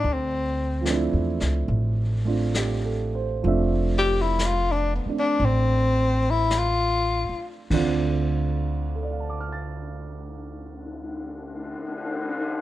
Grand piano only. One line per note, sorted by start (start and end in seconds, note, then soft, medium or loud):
0.81 3.41 F3 medium
0.81 2.24 A3 soft
0.86 2.25 C4 soft
0.86 2.26 D4 soft
0.92 3.47 E4 medium
2.25 3.43 A3 soft
2.25 3.44 C4 soft
2.25 3.45 D4 soft
2.25 2.71 F4 soft
2.56 3.10 G4 soft
2.85 3.31 A4 soft
3.15 3.62 C5 medium
3.43 7.70 F3 medium
3.43 5.04 A3 soft
3.43 5.05 C4 soft
3.43 5.08 D4 medium
3.48 7.73 E5 medium
5.06 7.71 A3 soft
5.06 7.72 C4 soft
5.06 7.72 D4 soft
7.71 11.79 D2 medium
7.71 11.80 D3 medium
7.71 11.81 C4 soft
7.71 11.81 D4 medium
7.71 11.82 F4 medium
8.95 12.61 A4 soft
9.03 12.61 D5 soft
9.11 12.61 F5 soft
9.20 12.61 A5 soft
9.30 12.61 D6 soft
9.40 12.61 F6 soft
9.52 12.61 A6 soft